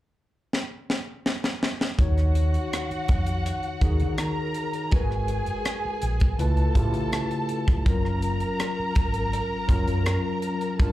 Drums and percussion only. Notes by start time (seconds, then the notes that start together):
0.53 snare
0.90 snare
1.26 snare
1.44 snare
1.63 snare
1.81 snare
1.99 kick, closed hi-hat
2.18 cross-stick, closed hi-hat
2.35 closed hi-hat
2.54 closed hi-hat
2.73 cross-stick, closed hi-hat
2.91 closed hi-hat
3.08 kick, closed hi-hat
3.26 closed hi-hat
3.46 closed hi-hat
3.63 closed hi-hat
3.81 kick, closed hi-hat
4.00 closed hi-hat
4.18 cross-stick, closed hi-hat
4.54 closed hi-hat
4.73 closed hi-hat
4.91 kick, closed hi-hat
5.11 cross-stick
5.28 closed hi-hat
5.46 closed hi-hat
5.65 cross-stick, closed hi-hat
6.02 closed hi-hat
6.20 kick, closed hi-hat
6.39 closed hi-hat
6.57 closed hi-hat
6.75 kick, closed hi-hat
6.94 closed hi-hat
7.13 cross-stick, closed hi-hat
7.31 closed hi-hat
7.49 closed hi-hat
7.68 kick, closed hi-hat
7.86 kick, closed hi-hat
8.05 cross-stick
8.22 closed hi-hat
8.40 closed hi-hat
8.60 cross-stick, closed hi-hat
8.95 kick, closed hi-hat
9.14 closed hi-hat
9.33 closed hi-hat
9.69 kick, closed hi-hat
9.88 closed hi-hat
10.06 cross-stick, closed hi-hat
10.42 closed hi-hat
10.61 closed hi-hat
10.79 kick, closed hi-hat